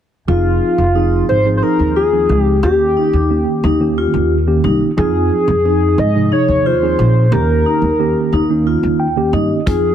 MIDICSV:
0, 0, Header, 1, 6, 480
1, 0, Start_track
1, 0, Key_signature, -4, "minor"
1, 0, Tempo, 670391
1, 203, Time_signature, 7, 3, 24, 8
1, 7123, End_track
2, 0, Start_track
2, 0, Title_t, "Analog synth lead"
2, 0, Program_c, 0, 81
2, 205, Note_on_c, 0, 65, 88
2, 897, Note_off_c, 0, 65, 0
2, 923, Note_on_c, 0, 72, 103
2, 1101, Note_off_c, 0, 72, 0
2, 1125, Note_on_c, 0, 72, 65
2, 1167, Note_on_c, 0, 70, 97
2, 1177, Note_off_c, 0, 72, 0
2, 1401, Note_off_c, 0, 70, 0
2, 1405, Note_on_c, 0, 68, 86
2, 1720, Note_off_c, 0, 68, 0
2, 1720, Note_on_c, 0, 67, 86
2, 1857, Note_off_c, 0, 67, 0
2, 1886, Note_on_c, 0, 67, 90
2, 2818, Note_off_c, 0, 67, 0
2, 3572, Note_on_c, 0, 68, 90
2, 4288, Note_on_c, 0, 75, 98
2, 4299, Note_off_c, 0, 68, 0
2, 4527, Note_off_c, 0, 75, 0
2, 4530, Note_on_c, 0, 73, 97
2, 4770, Note_on_c, 0, 72, 96
2, 4781, Note_off_c, 0, 73, 0
2, 5245, Note_on_c, 0, 70, 93
2, 5256, Note_off_c, 0, 72, 0
2, 6204, Note_off_c, 0, 70, 0
2, 6927, Note_on_c, 0, 68, 93
2, 7123, Note_off_c, 0, 68, 0
2, 7123, End_track
3, 0, Start_track
3, 0, Title_t, "Vibraphone"
3, 0, Program_c, 1, 11
3, 202, Note_on_c, 1, 65, 79
3, 457, Note_off_c, 1, 65, 0
3, 683, Note_on_c, 1, 63, 65
3, 938, Note_off_c, 1, 63, 0
3, 1164, Note_on_c, 1, 63, 68
3, 1292, Note_off_c, 1, 63, 0
3, 1405, Note_on_c, 1, 65, 67
3, 1660, Note_off_c, 1, 65, 0
3, 1886, Note_on_c, 1, 67, 80
3, 2013, Note_off_c, 1, 67, 0
3, 2126, Note_on_c, 1, 63, 65
3, 2380, Note_off_c, 1, 63, 0
3, 2609, Note_on_c, 1, 63, 72
3, 2735, Note_off_c, 1, 63, 0
3, 2849, Note_on_c, 1, 65, 73
3, 3103, Note_off_c, 1, 65, 0
3, 3327, Note_on_c, 1, 63, 67
3, 3453, Note_off_c, 1, 63, 0
3, 3568, Note_on_c, 1, 65, 73
3, 3821, Note_off_c, 1, 65, 0
3, 4049, Note_on_c, 1, 63, 65
3, 4302, Note_off_c, 1, 63, 0
3, 4525, Note_on_c, 1, 63, 74
3, 4652, Note_off_c, 1, 63, 0
3, 4768, Note_on_c, 1, 65, 76
3, 5021, Note_off_c, 1, 65, 0
3, 5245, Note_on_c, 1, 67, 76
3, 5372, Note_off_c, 1, 67, 0
3, 5487, Note_on_c, 1, 63, 67
3, 5740, Note_off_c, 1, 63, 0
3, 5967, Note_on_c, 1, 63, 77
3, 6093, Note_off_c, 1, 63, 0
3, 6206, Note_on_c, 1, 65, 68
3, 6459, Note_off_c, 1, 65, 0
3, 6683, Note_on_c, 1, 63, 67
3, 6810, Note_off_c, 1, 63, 0
3, 6921, Note_on_c, 1, 65, 79
3, 7123, Note_off_c, 1, 65, 0
3, 7123, End_track
4, 0, Start_track
4, 0, Title_t, "Tine electric piano"
4, 0, Program_c, 2, 4
4, 198, Note_on_c, 2, 53, 65
4, 199, Note_on_c, 2, 60, 60
4, 203, Note_on_c, 2, 63, 64
4, 207, Note_on_c, 2, 68, 78
4, 605, Note_off_c, 2, 53, 0
4, 606, Note_off_c, 2, 60, 0
4, 608, Note_off_c, 2, 63, 0
4, 610, Note_off_c, 2, 68, 0
4, 677, Note_on_c, 2, 53, 65
4, 680, Note_on_c, 2, 60, 59
4, 681, Note_on_c, 2, 63, 58
4, 684, Note_on_c, 2, 68, 73
4, 984, Note_off_c, 2, 53, 0
4, 986, Note_off_c, 2, 60, 0
4, 986, Note_off_c, 2, 63, 0
4, 987, Note_off_c, 2, 68, 0
4, 1038, Note_on_c, 2, 53, 62
4, 1041, Note_on_c, 2, 60, 54
4, 1044, Note_on_c, 2, 63, 56
4, 1046, Note_on_c, 2, 68, 66
4, 1446, Note_off_c, 2, 53, 0
4, 1447, Note_off_c, 2, 60, 0
4, 1449, Note_off_c, 2, 63, 0
4, 1450, Note_off_c, 2, 68, 0
4, 1522, Note_on_c, 2, 53, 63
4, 1524, Note_on_c, 2, 60, 57
4, 1525, Note_on_c, 2, 63, 57
4, 1526, Note_on_c, 2, 68, 66
4, 1827, Note_off_c, 2, 53, 0
4, 1828, Note_off_c, 2, 60, 0
4, 1829, Note_off_c, 2, 63, 0
4, 1829, Note_off_c, 2, 68, 0
4, 1880, Note_on_c, 2, 51, 69
4, 1882, Note_on_c, 2, 58, 64
4, 1886, Note_on_c, 2, 61, 68
4, 1889, Note_on_c, 2, 67, 80
4, 2287, Note_off_c, 2, 51, 0
4, 2288, Note_off_c, 2, 58, 0
4, 2290, Note_off_c, 2, 61, 0
4, 2291, Note_off_c, 2, 67, 0
4, 2362, Note_on_c, 2, 51, 62
4, 2363, Note_on_c, 2, 58, 60
4, 2366, Note_on_c, 2, 61, 58
4, 2368, Note_on_c, 2, 67, 71
4, 2667, Note_off_c, 2, 51, 0
4, 2668, Note_off_c, 2, 58, 0
4, 2669, Note_off_c, 2, 61, 0
4, 2670, Note_off_c, 2, 67, 0
4, 2721, Note_on_c, 2, 51, 75
4, 2723, Note_on_c, 2, 58, 68
4, 2725, Note_on_c, 2, 61, 66
4, 2728, Note_on_c, 2, 67, 85
4, 3127, Note_off_c, 2, 51, 0
4, 3129, Note_off_c, 2, 58, 0
4, 3129, Note_off_c, 2, 61, 0
4, 3131, Note_off_c, 2, 67, 0
4, 3199, Note_on_c, 2, 51, 79
4, 3203, Note_on_c, 2, 58, 71
4, 3205, Note_on_c, 2, 61, 65
4, 3207, Note_on_c, 2, 67, 79
4, 3505, Note_off_c, 2, 51, 0
4, 3507, Note_off_c, 2, 58, 0
4, 3508, Note_off_c, 2, 61, 0
4, 3509, Note_off_c, 2, 67, 0
4, 3558, Note_on_c, 2, 53, 75
4, 3560, Note_on_c, 2, 60, 72
4, 3560, Note_on_c, 2, 63, 69
4, 3563, Note_on_c, 2, 68, 84
4, 3966, Note_off_c, 2, 53, 0
4, 3967, Note_off_c, 2, 60, 0
4, 3967, Note_off_c, 2, 63, 0
4, 3968, Note_off_c, 2, 68, 0
4, 4043, Note_on_c, 2, 53, 70
4, 4043, Note_on_c, 2, 60, 59
4, 4046, Note_on_c, 2, 63, 61
4, 4050, Note_on_c, 2, 68, 77
4, 4347, Note_off_c, 2, 53, 0
4, 4347, Note_off_c, 2, 60, 0
4, 4349, Note_off_c, 2, 63, 0
4, 4350, Note_off_c, 2, 68, 0
4, 4400, Note_on_c, 2, 53, 66
4, 4405, Note_on_c, 2, 48, 59
4, 4406, Note_on_c, 2, 63, 61
4, 4409, Note_on_c, 2, 68, 66
4, 4806, Note_off_c, 2, 53, 0
4, 4809, Note_off_c, 2, 48, 0
4, 4809, Note_off_c, 2, 63, 0
4, 4811, Note_off_c, 2, 68, 0
4, 4883, Note_on_c, 2, 53, 61
4, 4888, Note_on_c, 2, 60, 60
4, 4889, Note_on_c, 2, 63, 62
4, 4892, Note_on_c, 2, 68, 72
4, 5186, Note_off_c, 2, 53, 0
4, 5189, Note_off_c, 2, 60, 0
4, 5190, Note_off_c, 2, 63, 0
4, 5191, Note_off_c, 2, 68, 0
4, 5236, Note_on_c, 2, 51, 73
4, 5237, Note_on_c, 2, 58, 68
4, 5242, Note_on_c, 2, 61, 69
4, 5246, Note_on_c, 2, 67, 83
4, 5644, Note_off_c, 2, 51, 0
4, 5644, Note_off_c, 2, 58, 0
4, 5647, Note_off_c, 2, 61, 0
4, 5649, Note_off_c, 2, 67, 0
4, 5720, Note_on_c, 2, 51, 66
4, 5723, Note_on_c, 2, 58, 62
4, 5726, Note_on_c, 2, 61, 66
4, 5726, Note_on_c, 2, 67, 79
4, 6024, Note_off_c, 2, 51, 0
4, 6026, Note_off_c, 2, 58, 0
4, 6028, Note_off_c, 2, 61, 0
4, 6028, Note_off_c, 2, 67, 0
4, 6082, Note_on_c, 2, 51, 81
4, 6084, Note_on_c, 2, 58, 69
4, 6087, Note_on_c, 2, 61, 68
4, 6089, Note_on_c, 2, 63, 76
4, 6441, Note_on_c, 2, 79, 69
4, 6486, Note_off_c, 2, 51, 0
4, 6487, Note_off_c, 2, 58, 0
4, 6489, Note_off_c, 2, 61, 0
4, 6490, Note_off_c, 2, 63, 0
4, 6561, Note_on_c, 2, 51, 74
4, 6561, Note_on_c, 2, 58, 68
4, 6566, Note_on_c, 2, 61, 70
4, 6568, Note_on_c, 2, 67, 84
4, 6665, Note_off_c, 2, 79, 0
4, 6687, Note_on_c, 2, 75, 59
4, 6865, Note_off_c, 2, 51, 0
4, 6865, Note_off_c, 2, 58, 0
4, 6867, Note_off_c, 2, 61, 0
4, 6868, Note_off_c, 2, 67, 0
4, 6908, Note_off_c, 2, 75, 0
4, 6919, Note_on_c, 2, 53, 73
4, 6919, Note_on_c, 2, 60, 68
4, 6922, Note_on_c, 2, 63, 61
4, 6927, Note_on_c, 2, 68, 73
4, 7123, Note_off_c, 2, 53, 0
4, 7123, Note_off_c, 2, 60, 0
4, 7123, Note_off_c, 2, 63, 0
4, 7123, Note_off_c, 2, 68, 0
4, 7123, End_track
5, 0, Start_track
5, 0, Title_t, "Upright bass"
5, 0, Program_c, 3, 32
5, 203, Note_on_c, 3, 29, 84
5, 416, Note_off_c, 3, 29, 0
5, 560, Note_on_c, 3, 29, 72
5, 881, Note_off_c, 3, 29, 0
5, 923, Note_on_c, 3, 32, 72
5, 1137, Note_off_c, 3, 32, 0
5, 1284, Note_on_c, 3, 39, 67
5, 1604, Note_off_c, 3, 39, 0
5, 1642, Note_on_c, 3, 37, 80
5, 1856, Note_off_c, 3, 37, 0
5, 1883, Note_on_c, 3, 39, 97
5, 2097, Note_off_c, 3, 39, 0
5, 2243, Note_on_c, 3, 39, 70
5, 2457, Note_off_c, 3, 39, 0
5, 2603, Note_on_c, 3, 39, 82
5, 2924, Note_off_c, 3, 39, 0
5, 2962, Note_on_c, 3, 39, 75
5, 3283, Note_off_c, 3, 39, 0
5, 3322, Note_on_c, 3, 36, 81
5, 3430, Note_off_c, 3, 36, 0
5, 3563, Note_on_c, 3, 41, 90
5, 3777, Note_off_c, 3, 41, 0
5, 3921, Note_on_c, 3, 41, 80
5, 4242, Note_off_c, 3, 41, 0
5, 4282, Note_on_c, 3, 44, 82
5, 4496, Note_off_c, 3, 44, 0
5, 4642, Note_on_c, 3, 39, 70
5, 4962, Note_off_c, 3, 39, 0
5, 5003, Note_on_c, 3, 34, 80
5, 5216, Note_off_c, 3, 34, 0
5, 5240, Note_on_c, 3, 39, 102
5, 5455, Note_off_c, 3, 39, 0
5, 5597, Note_on_c, 3, 39, 69
5, 5813, Note_off_c, 3, 39, 0
5, 5961, Note_on_c, 3, 39, 70
5, 6281, Note_off_c, 3, 39, 0
5, 6323, Note_on_c, 3, 39, 68
5, 6642, Note_off_c, 3, 39, 0
5, 6680, Note_on_c, 3, 43, 76
5, 6787, Note_off_c, 3, 43, 0
5, 6923, Note_on_c, 3, 41, 84
5, 7123, Note_off_c, 3, 41, 0
5, 7123, End_track
6, 0, Start_track
6, 0, Title_t, "Drums"
6, 6923, Note_on_c, 9, 36, 91
6, 6924, Note_on_c, 9, 42, 66
6, 6995, Note_off_c, 9, 36, 0
6, 6995, Note_off_c, 9, 42, 0
6, 7123, End_track
0, 0, End_of_file